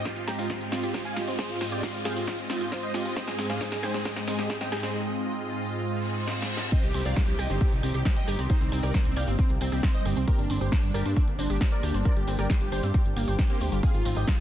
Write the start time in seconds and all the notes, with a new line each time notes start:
Already playing: G#2 G#3 C4 G4 D#5, riser
0.05 F4 C5, kick, snare, closed hi-hat, tambourine
0.16 F4, closed hi-hat
0.27 G4 G5 A#5, snare, open hi-hat, tambourine
0.38 C4 F4, closed hi-hat, tambourine
0.50 C4 F4, kick, snare, closed hi-hat, tambourine
0.61 closed hi-hat
0.72 C4 F4, snare, open hi-hat, tambourine
0.83 F4 G4, closed hi-hat, tambourine
0.94 F4 C5, kick, snare, closed hi-hat, tambourine
1.05 F5 G#5, closed hi-hat
1.16 F4 G4, snare, open hi-hat, tambourine
1.27 C4 F4, closed hi-hat, tambourine
1.39 C4 F4 G#4 C5, kick, snare, closed hi-hat
1.50 F4, closed hi-hat
1.61 C4 F4, snare, open hi-hat, tambourine
1.72 F4 G4 D5, closed hi-hat, tambourine
1.83 F4 C5, kick, snare, closed hi-hat, tambourine
1.94 F4, closed hi-hat
2.05 G4 G#4 F5, snare, open hi-hat, tambourine
2.16 C4 F4, closed hi-hat, tambourine
2.27 C4 F4, kick, snare, closed hi-hat
2.39 closed hi-hat
2.50 C4 F4, snare, open hi-hat, tambourine
2.61 F4 G4, closed hi-hat, tambourine
2.72 F4 C5, kick, snare, closed hi-hat, tambourine
2.83 C5 D#5, closed hi-hat
2.94 F4 G4, snare, open hi-hat, tambourine
3.05 C4 F4, closed hi-hat, tambourine
3.16 C4 D#4 C5 D#5, kick, snare, closed hi-hat
3.27 G#4, snare, closed hi-hat
3.39 C4 G#4, snare, open hi-hat, tambourine
3.50 G4 G#4 F5, snare, closed hi-hat, tambourine
3.61 G#4 C5, kick, snare, closed hi-hat, tambourine
3.72 G#4, snare, closed hi-hat
3.83 G4 C5 G#5, snare, open hi-hat, tambourine
3.94 C4 G#4, snare, closed hi-hat, tambourine
4.05 C4 G#4, kick, snare, closed hi-hat, tambourine
4.16 snare, closed hi-hat
4.28 C4 G#4, snare, open hi-hat, tambourine
4.39 G4 G#4, snare, closed hi-hat, tambourine
4.50 G#4 C5, kick, snare, closed hi-hat, tambourine
4.61 D#5 G5, snare, closed hi-hat
4.72 G4 G#4, snare, open hi-hat, tambourine
4.83 C4 G#4, snare, closed hi-hat, tambourine
4.94 F4
5.83 reverse cymbal
6.28 snare
6.42 snare
6.57 snare
6.72 G3 C4 D#4 C5 D#5, kick, closed hi-hat, tambourine, crash, downlifter
6.83 C2 G4, closed hi-hat
6.94 C2 C4 G4, open hi-hat, tambourine
7.05 C2 G4 D5 F5, closed hi-hat, tambourine
7.16 G4 C5, kick, snare, closed hi-hat, tambourine
7.28 C2 G4, closed hi-hat
7.39 C2 G4 D#5 G5, open hi-hat, tambourine
7.50 G1 C4 G4, closed hi-hat, tambourine
7.61 C4 G4, kick, closed hi-hat, tambourine
7.72 C2, closed hi-hat
7.83 C2 C4 G4, open hi-hat, tambourine
7.94 C2 G4, closed hi-hat, tambourine
8.05 G4 C5, kick, snare, closed hi-hat
8.16 D#5 G5, closed hi-hat
8.27 G1 G4, open hi-hat, tambourine
8.39 C2 C4 G4, closed hi-hat, tambourine
8.50 A#3 C4 D#4 C5, kick, closed hi-hat, tambourine
8.61 C2 C4, closed hi-hat
8.72 C2 C4, open hi-hat, tambourine
8.83 C2 G4 A#4 D5, closed hi-hat, tambourine
8.94 C4 C5, kick, snare, closed hi-hat
9.05 C2 C4, closed hi-hat
9.16 C2 G4 D5 F5, open hi-hat, tambourine
9.28 G1 C4, closed hi-hat, tambourine
9.39 C4, kick, closed hi-hat, tambourine
9.50 C2, closed hi-hat
9.61 C2 C4, open hi-hat, tambourine
9.72 C2 C4 G4, closed hi-hat, tambourine
9.83 C4 C5, kick, snare, closed hi-hat
9.94 C5 D#5, closed hi-hat
10.05 G1 C4 G4, open hi-hat, tambourine
10.17 C2 C4, closed hi-hat, tambourine
10.27 C4 D4 G4 A#4, kick, closed hi-hat, tambourine
10.39 G1 D4, closed hi-hat
10.50 G1 C4 D4, open hi-hat, tambourine
10.61 G1 G4 C5, closed hi-hat, tambourine
10.72 D4 C5, kick, snare, closed hi-hat, tambourine
10.83 G1 D4, closed hi-hat
10.94 G1 G4 A#4 D5, open hi-hat, tambourine
11.05 G2 C4 D4, closed hi-hat, tambourine
11.16 C4 D4, kick, closed hi-hat, tambourine
11.28 G1, closed hi-hat
11.39 G1 C4 D4, open hi-hat, tambourine
11.50 G1 D4 G4, closed hi-hat, tambourine
11.61 D4 C5, kick, snare, closed hi-hat
11.72 A#4 D5, closed hi-hat
11.83 D2 D4 G4, open hi-hat, tambourine
11.94 G1 C4 D4, closed hi-hat, tambourine
12.05 C4 A#4 D5, kick, closed hi-hat, tambourine
12.16 G1 G4, closed hi-hat
12.28 G1 C4 G4, open hi-hat, tambourine
12.39 G1 G4 A#4 D5, closed hi-hat, tambourine
12.50 G4 C5, kick, snare, closed hi-hat, tambourine
12.61 G1 G4, closed hi-hat
12.72 G1 G4 C5, open hi-hat, tambourine
12.83 G2 C4 G4, closed hi-hat, tambourine
12.94 C4 G4, kick, closed hi-hat, tambourine
13.05 G1, closed hi-hat
13.16 G1 A#3 G4, open hi-hat, tambourine
13.28 G1 G4 C5, closed hi-hat, tambourine
13.39 G4, kick, snare, closed hi-hat, tambourine
13.50 A#3 C4 G4, closed hi-hat
13.61 D2 G4 C5, open hi-hat, tambourine
13.72 G1 F4 G4, closed hi-hat, tambourine
13.83 F3 G#3 C4 D#4 G#4 F5, kick, closed hi-hat, ride, tambourine
13.94 G#1 F4, closed hi-hat
14.05 G#1 C4 F4, open hi-hat, ride, tambourine
14.16 G#1 G4 D#5 G5, closed hi-hat, tambourine
14.28 F4 C5, kick, snare, closed hi-hat, ride, tambourine